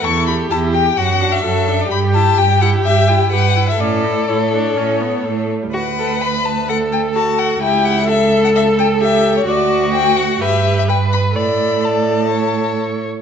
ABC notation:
X:1
M:4/4
L:1/16
Q:1/4=127
K:D
V:1 name="Violin"
c'2 b2 a2 g2 f3 e4 d | b2 a2 g2 f2 e2 g2 f3 e | d4 c8- c2 z2 | f4 b2 a2 f2 g2 a2 f2 |
g2 f2 e3 f e2 g2 e3 c | d4 g2 f2 e3 e g2 b2 | b4 a8 z4 |]
V:2 name="Violin"
A4 G4 F4 A4 | G12 B4 | A12- A2 z2 | F2 A2 B4 A4 F4 |
E4 A8 G4 | F8 B4 B4 | d4 d4 c6 z2 |]
V:3 name="Viola"
E2 G2 E2 G2 F2 D2 F2 D2 | G2 E2 G2 E2 G2 E2 G2 E2 | C2 E2 E2 D2 C2 B,2 A,3 G, | B8 A8 |
G4 A12 | F8 G4 B4 | A12- A2 z2 |]
V:4 name="Cello" clef=bass
E,,4 E,,4 F,,4 F,,4 | G,,4 G,,4 G,,4 G,,4 | A,,4 A,,4 A,,4 A,,4 | D,,16 |
C,,16 | D,,8 G,,8 | A,,12- A,,2 z2 |]